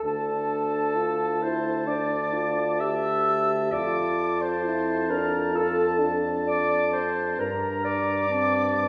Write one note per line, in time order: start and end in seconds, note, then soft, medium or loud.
0.03 3.68 D2 soft
0.03 0.98 D4 soft
0.03 1.44 A4 medium
0.03 3.67 A5 soft
0.03 1.43 A5 medium
0.96 1.44 F4 medium
1.42 1.89 E4 soft
1.42 1.90 C5 medium
1.42 1.88 C6 medium
1.87 2.35 D4 soft
1.87 2.81 D5 medium
1.87 2.82 D6 soft
2.34 2.82 F4 medium
2.80 3.72 G4 medium
2.80 3.74 E5 medium
2.80 3.71 E6 medium
3.71 7.34 F2 medium
3.71 4.63 F4 medium
3.71 4.41 D5 medium
3.71 7.35 A5 medium
3.71 4.42 D6 medium
4.40 5.12 C5 medium
4.40 5.11 C6 medium
4.65 5.12 E4 medium
5.10 5.56 D4 medium
5.10 5.58 A#4 medium
5.10 5.57 A#5 medium
5.54 6.01 F4 medium
5.54 6.21 A4 medium
5.54 6.20 A5 medium
5.99 7.12 D4 medium
6.47 6.90 D5 medium
6.47 6.95 D6 medium
6.92 7.41 C5 medium
6.92 7.42 C6 medium
7.37 8.88 G2 medium
7.37 8.26 D4 medium
7.37 7.84 A#4 medium
7.37 8.33 A#5 medium
7.41 7.87 A#5 medium
7.85 8.88 D5 medium
7.85 8.88 D6 medium
8.30 8.88 C4 medium
8.30 8.88 A5 medium